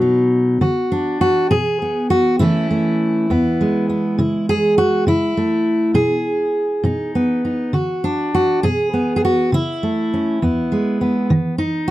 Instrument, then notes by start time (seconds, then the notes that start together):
steel-string acoustic guitar
Already playing: B2 F#3
0.01 D#4
0.61 D3 F#4
0.92 D4
1.21 F#4
1.51 B2 G#4
1.82 B3
2.10 F#4
2.39 C#3 E3 A3 C#4 E4
2.71 A3
3.30 E2 B3
3.61 G#3
3.89 B3
4.18 C#3 E4
4.49 G#4
4.78 F#4
5.07 C#3 E4
5.37 A3
5.94 B2 G#4
6.84 B2 D#4
7.15 B3
7.45 D#4
7.73 D3 F#4
8.04 D4
8.35 F#4
8.63 B2 G#4
8.93 B3
9.16 G#4
9.25 F#4
9.52 C#3 E4
9.83 A3
10.13 C#4
10.42 E2 B3
10.72 G#3
11.01 B3
11.30 D#3
11.58 D#4